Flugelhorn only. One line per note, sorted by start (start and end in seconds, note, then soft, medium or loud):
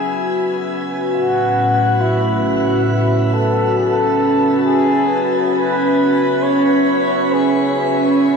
0.00 0.23 G#4 loud
1.13 2.02 F#4 medium
2.01 2.88 E4 medium
2.89 3.35 E4 medium
3.34 3.77 A4 medium
3.78 4.61 A4 loud
4.66 5.23 G#4 loud
5.54 6.44 B4 loud
6.43 7.35 C#5 medium
7.33 8.01 G#4 medium